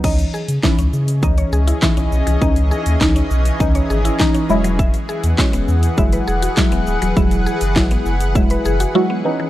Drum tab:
CC |x---------------|----------------|----------------|----------------|
HH |-x-x-x-x-x-x-x-x|-x-x-x-x-x-x-x-x|-x-x-x-x-x-x-x-x|-x-x-x-x-x-x----|
SH |xxxxxxxxxxxxxxxx|xxxxxxxxxxxxxxxx|xxxxxxxxxxxxxxxx|xxxxxxxxxxxx----|
CP |----x-------x---|----x-------x---|----x-------x---|----x-----------|
SD |----o-------o---|----o-------o---|----o-------o---|----o-----------|
BD |o---o---o---o---|o---o---o---o---|o---o---o---o---|o---o---o-------|